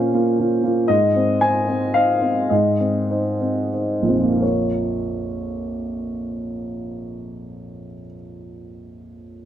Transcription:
0, 0, Header, 1, 2, 480
1, 0, Start_track
1, 0, Key_signature, -5, "minor"
1, 0, Tempo, 516351
1, 831, Time_signature, 3, 2, 24, 8
1, 1805, Tempo, 570342
1, 2765, Tempo, 628272
1, 3245, Tempo, 684932
1, 5645, Tempo, 669643
1, 7306, End_track
2, 0, Start_track
2, 0, Title_t, "Upright piano"
2, 0, Program_c, 0, 0
2, 0, Control_c, 0, 64, 127
2, 0, Note_on_c, 0, 46, 42
2, 0, Note_on_c, 0, 58, 34
2, 0, Note_on_c, 0, 61, 35
2, 0, Note_on_c, 0, 65, 41
2, 0, Note_on_c, 0, 72, 54
2, 105, Note_off_c, 0, 61, 0
2, 109, Note_off_c, 0, 65, 0
2, 130, Note_on_c, 0, 65, 40
2, 132, Note_off_c, 0, 58, 0
2, 132, Note_on_c, 0, 58, 36
2, 338, Note_off_c, 0, 65, 0
2, 339, Note_off_c, 0, 58, 0
2, 366, Note_on_c, 0, 65, 35
2, 367, Note_on_c, 0, 61, 31
2, 574, Note_off_c, 0, 65, 0
2, 575, Note_off_c, 0, 61, 0
2, 586, Note_on_c, 0, 58, 34
2, 591, Note_on_c, 0, 65, 37
2, 595, Note_off_c, 0, 72, 0
2, 802, Note_off_c, 0, 46, 0
2, 803, Note_off_c, 0, 58, 0
2, 806, Note_off_c, 0, 65, 0
2, 817, Note_on_c, 0, 75, 70
2, 829, Note_on_c, 0, 44, 51
2, 850, Control_c, 0, 64, 0
2, 995, Control_c, 0, 64, 127
2, 1077, Note_on_c, 0, 60, 40
2, 1081, Note_on_c, 0, 72, 42
2, 1291, Note_off_c, 0, 60, 0
2, 1294, Note_off_c, 0, 72, 0
2, 1305, Note_off_c, 0, 75, 0
2, 1312, Note_on_c, 0, 80, 69
2, 1319, Note_on_c, 0, 63, 36
2, 1326, Note_on_c, 0, 72, 39
2, 1536, Note_off_c, 0, 63, 0
2, 1540, Note_off_c, 0, 72, 0
2, 1559, Note_on_c, 0, 60, 38
2, 1571, Note_on_c, 0, 72, 41
2, 1781, Note_off_c, 0, 60, 0
2, 1787, Note_off_c, 0, 72, 0
2, 1803, Note_on_c, 0, 77, 70
2, 1804, Note_off_c, 0, 80, 0
2, 1814, Note_on_c, 0, 63, 35
2, 1817, Note_on_c, 0, 72, 37
2, 2016, Note_off_c, 0, 63, 0
2, 2018, Note_off_c, 0, 72, 0
2, 2036, Note_on_c, 0, 60, 29
2, 2038, Note_on_c, 0, 72, 36
2, 2237, Note_off_c, 0, 44, 0
2, 2249, Note_off_c, 0, 60, 0
2, 2250, Note_off_c, 0, 72, 0
2, 2271, Note_off_c, 0, 77, 0
2, 2271, Note_on_c, 0, 75, 46
2, 2282, Note_on_c, 0, 44, 46
2, 2290, Control_c, 0, 64, 0
2, 2469, Control_c, 0, 64, 127
2, 2528, Note_on_c, 0, 60, 33
2, 2532, Note_on_c, 0, 72, 34
2, 2747, Note_off_c, 0, 60, 0
2, 2749, Note_off_c, 0, 72, 0
2, 2782, Note_on_c, 0, 63, 33
2, 2784, Note_on_c, 0, 72, 38
2, 2985, Note_off_c, 0, 63, 0
2, 2986, Note_off_c, 0, 72, 0
2, 3018, Note_on_c, 0, 60, 29
2, 3019, Note_on_c, 0, 72, 30
2, 3231, Note_off_c, 0, 60, 0
2, 3231, Note_off_c, 0, 72, 0
2, 3264, Note_on_c, 0, 63, 27
2, 3265, Note_on_c, 0, 72, 29
2, 3464, Note_on_c, 0, 34, 37
2, 3473, Note_off_c, 0, 63, 0
2, 3474, Note_off_c, 0, 72, 0
2, 3487, Note_off_c, 0, 75, 0
2, 3501, Note_on_c, 0, 60, 27
2, 3506, Note_on_c, 0, 72, 29
2, 3508, Note_on_c, 0, 41, 32
2, 3561, Note_on_c, 0, 53, 30
2, 3609, Note_on_c, 0, 58, 31
2, 3655, Note_on_c, 0, 65, 30
2, 3705, Note_on_c, 0, 70, 29
2, 3710, Note_off_c, 0, 44, 0
2, 3717, Note_off_c, 0, 60, 0
2, 3720, Note_off_c, 0, 72, 0
2, 3744, Note_on_c, 0, 73, 36
2, 3753, Control_c, 0, 64, 0
2, 3921, Control_c, 0, 64, 127
2, 6115, Note_off_c, 0, 34, 0
2, 6160, Note_off_c, 0, 41, 0
2, 6214, Note_off_c, 0, 53, 0
2, 6264, Note_off_c, 0, 58, 0
2, 6311, Note_off_c, 0, 65, 0
2, 6362, Note_off_c, 0, 70, 0
2, 6402, Note_off_c, 0, 73, 0
2, 7306, End_track
0, 0, End_of_file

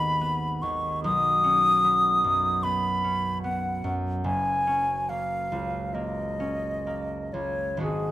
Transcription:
0, 0, Header, 1, 3, 480
1, 0, Start_track
1, 0, Tempo, 805369
1, 621, Time_signature, 4, 2, 24, 8
1, 2530, Tempo, 841515
1, 3010, Tempo, 852273
1, 3490, Tempo, 944882
1, 4595, End_track
2, 0, Start_track
2, 0, Title_t, "Flute"
2, 0, Program_c, 0, 73
2, 0, Note_on_c, 0, 83, 79
2, 370, Note_on_c, 0, 85, 63
2, 379, Note_off_c, 0, 83, 0
2, 615, Note_off_c, 0, 85, 0
2, 619, Note_on_c, 0, 87, 89
2, 1569, Note_on_c, 0, 83, 70
2, 1578, Note_off_c, 0, 87, 0
2, 2039, Note_off_c, 0, 83, 0
2, 2042, Note_on_c, 0, 78, 58
2, 2356, Note_off_c, 0, 78, 0
2, 2530, Note_on_c, 0, 80, 75
2, 3013, Note_on_c, 0, 77, 58
2, 3022, Note_off_c, 0, 80, 0
2, 3491, Note_on_c, 0, 75, 53
2, 3499, Note_off_c, 0, 77, 0
2, 4198, Note_on_c, 0, 73, 52
2, 4206, Note_off_c, 0, 75, 0
2, 4444, Note_off_c, 0, 73, 0
2, 4447, Note_on_c, 0, 68, 54
2, 4595, Note_off_c, 0, 68, 0
2, 4595, End_track
3, 0, Start_track
3, 0, Title_t, "Harp"
3, 0, Program_c, 1, 46
3, 0, Note_on_c, 1, 32, 43
3, 0, Note_on_c, 1, 39, 38
3, 0, Note_on_c, 1, 59, 40
3, 0, Note_on_c, 1, 63, 37
3, 119, Note_off_c, 1, 59, 0
3, 126, Note_on_c, 1, 59, 36
3, 366, Note_off_c, 1, 39, 0
3, 373, Note_on_c, 1, 39, 37
3, 620, Note_on_c, 1, 35, 46
3, 640, Note_off_c, 1, 39, 0
3, 642, Note_off_c, 1, 32, 0
3, 858, Note_on_c, 1, 61, 38
3, 1092, Note_off_c, 1, 59, 0
3, 1099, Note_on_c, 1, 59, 37
3, 1336, Note_on_c, 1, 42, 37
3, 1568, Note_off_c, 1, 59, 0
3, 1575, Note_on_c, 1, 59, 37
3, 1805, Note_off_c, 1, 61, 0
3, 1812, Note_on_c, 1, 61, 38
3, 2044, Note_off_c, 1, 59, 0
3, 2051, Note_on_c, 1, 59, 38
3, 2208, Note_off_c, 1, 63, 0
3, 2282, Note_off_c, 1, 42, 0
3, 2289, Note_on_c, 1, 42, 33
3, 2528, Note_on_c, 1, 30, 41
3, 2548, Note_off_c, 1, 35, 0
3, 2549, Note_off_c, 1, 42, 0
3, 2549, Note_off_c, 1, 59, 0
3, 2766, Note_off_c, 1, 61, 0
3, 2773, Note_on_c, 1, 61, 41
3, 3017, Note_on_c, 1, 58, 37
3, 3253, Note_on_c, 1, 37, 34
3, 3487, Note_off_c, 1, 58, 0
3, 3493, Note_on_c, 1, 58, 35
3, 3717, Note_off_c, 1, 61, 0
3, 3723, Note_on_c, 1, 61, 33
3, 3956, Note_off_c, 1, 58, 0
3, 3962, Note_on_c, 1, 58, 32
3, 4194, Note_off_c, 1, 37, 0
3, 4200, Note_on_c, 1, 37, 33
3, 4421, Note_on_c, 1, 32, 38
3, 4425, Note_on_c, 1, 56, 27
3, 4428, Note_on_c, 1, 59, 27
3, 4436, Note_on_c, 1, 66, 30
3, 4439, Note_on_c, 1, 68, 28
3, 4464, Note_off_c, 1, 30, 0
3, 4465, Note_off_c, 1, 37, 0
3, 4467, Note_off_c, 1, 58, 0
3, 4467, Note_off_c, 1, 61, 0
3, 4595, Note_off_c, 1, 32, 0
3, 4595, Note_off_c, 1, 56, 0
3, 4595, Note_off_c, 1, 59, 0
3, 4595, Note_off_c, 1, 66, 0
3, 4595, Note_off_c, 1, 68, 0
3, 4595, End_track
0, 0, End_of_file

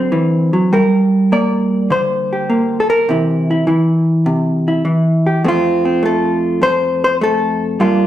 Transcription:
0, 0, Header, 1, 2, 480
1, 0, Start_track
1, 0, Key_signature, -1, "major"
1, 0, Tempo, 589391
1, 583, Time_signature, 4, 2, 24, 8
1, 6571, End_track
2, 0, Start_track
2, 0, Title_t, "Hollow-body jazz guitar"
2, 0, Program_c, 0, 26
2, 0, Note_on_c, 0, 50, 72
2, 0, Note_on_c, 0, 54, 45
2, 0, Note_on_c, 0, 60, 44
2, 94, Note_off_c, 0, 54, 0
2, 97, Note_on_c, 0, 52, 54
2, 430, Note_off_c, 0, 52, 0
2, 433, Note_on_c, 0, 54, 51
2, 565, Note_off_c, 0, 50, 0
2, 567, Note_off_c, 0, 60, 0
2, 583, Note_off_c, 0, 54, 0
2, 591, Note_on_c, 0, 55, 63
2, 598, Note_on_c, 0, 70, 66
2, 1076, Note_on_c, 0, 58, 54
2, 1082, Note_on_c, 0, 74, 69
2, 1549, Note_off_c, 0, 70, 0
2, 1550, Note_on_c, 0, 50, 59
2, 1552, Note_off_c, 0, 74, 0
2, 1562, Note_on_c, 0, 72, 77
2, 1894, Note_on_c, 0, 67, 40
2, 2023, Note_off_c, 0, 58, 0
2, 2033, Note_on_c, 0, 58, 51
2, 2277, Note_off_c, 0, 67, 0
2, 2280, Note_on_c, 0, 69, 73
2, 2356, Note_off_c, 0, 69, 0
2, 2359, Note_on_c, 0, 70, 90
2, 2490, Note_off_c, 0, 50, 0
2, 2491, Note_off_c, 0, 55, 0
2, 2491, Note_off_c, 0, 58, 0
2, 2513, Note_off_c, 0, 72, 0
2, 2514, Note_on_c, 0, 48, 61
2, 2525, Note_on_c, 0, 52, 47
2, 2531, Note_on_c, 0, 64, 42
2, 2852, Note_off_c, 0, 64, 0
2, 2855, Note_on_c, 0, 64, 44
2, 2986, Note_off_c, 0, 52, 0
2, 2989, Note_off_c, 0, 48, 0
2, 2989, Note_on_c, 0, 52, 59
2, 2993, Note_off_c, 0, 64, 0
2, 2996, Note_on_c, 0, 64, 43
2, 3470, Note_on_c, 0, 48, 65
2, 3801, Note_off_c, 0, 64, 0
2, 3810, Note_on_c, 0, 64, 42
2, 3939, Note_off_c, 0, 52, 0
2, 3947, Note_off_c, 0, 48, 0
2, 3949, Note_on_c, 0, 52, 56
2, 4278, Note_off_c, 0, 70, 0
2, 4288, Note_on_c, 0, 67, 38
2, 4409, Note_off_c, 0, 52, 0
2, 4413, Note_off_c, 0, 67, 0
2, 4414, Note_off_c, 0, 64, 0
2, 4434, Note_on_c, 0, 41, 71
2, 4438, Note_on_c, 0, 57, 43
2, 4444, Note_on_c, 0, 60, 47
2, 4466, Note_on_c, 0, 65, 86
2, 4756, Note_off_c, 0, 60, 0
2, 4766, Note_on_c, 0, 60, 48
2, 4898, Note_off_c, 0, 57, 0
2, 4908, Note_on_c, 0, 57, 63
2, 4910, Note_off_c, 0, 60, 0
2, 4931, Note_on_c, 0, 69, 79
2, 5378, Note_off_c, 0, 41, 0
2, 5387, Note_on_c, 0, 41, 61
2, 5395, Note_off_c, 0, 65, 0
2, 5398, Note_on_c, 0, 72, 109
2, 5722, Note_off_c, 0, 72, 0
2, 5736, Note_on_c, 0, 72, 108
2, 5819, Note_off_c, 0, 72, 0
2, 5865, Note_off_c, 0, 57, 0
2, 5875, Note_on_c, 0, 57, 63
2, 5877, Note_off_c, 0, 69, 0
2, 5892, Note_on_c, 0, 69, 82
2, 6331, Note_off_c, 0, 57, 0
2, 6345, Note_off_c, 0, 41, 0
2, 6351, Note_on_c, 0, 43, 63
2, 6355, Note_on_c, 0, 55, 46
2, 6357, Note_off_c, 0, 69, 0
2, 6359, Note_on_c, 0, 65, 65
2, 6360, Note_on_c, 0, 58, 44
2, 6368, Note_on_c, 0, 62, 43
2, 6571, Note_off_c, 0, 43, 0
2, 6571, Note_off_c, 0, 55, 0
2, 6571, Note_off_c, 0, 58, 0
2, 6571, Note_off_c, 0, 62, 0
2, 6571, Note_off_c, 0, 65, 0
2, 6571, End_track
0, 0, End_of_file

